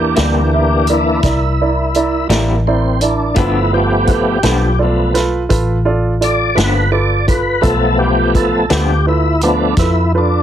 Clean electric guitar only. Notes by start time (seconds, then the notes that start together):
0.16 C3 G3 A#3 E4
2.29 C3 G3 A#3 E4
3.36 G2 F3 B3 D4
4.43 G2 F3 B3 D4
6.57 G2 F3 B3 D4
8.70 G2 F3 B3 D4